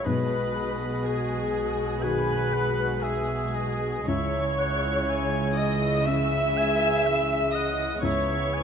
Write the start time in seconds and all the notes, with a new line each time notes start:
0.04 B1 B2 F#3 G#3 F#4 G#4 B4 D#5 B5
1.04 G#4 G#5
2.02 D#3 F#4 G#4 B4 G#5 B5
2.53 F#5
3.01 G#4 E5 G#5
3.55 D#5
4.06 C#2 C#3 E3 G#3 E4 G#4 C#5 E5 C#6
4.59 F#5
5.10 G#5
5.57 D#5 D#6
6.06 C#4 E4 G#4 E5 E6
6.57 G#5
7.07 E5
7.53 D#5 F#5 D#6
8.01 C#2 C#3 E3 B3 E4 B4 C#5 E5 C#6
8.54 G#5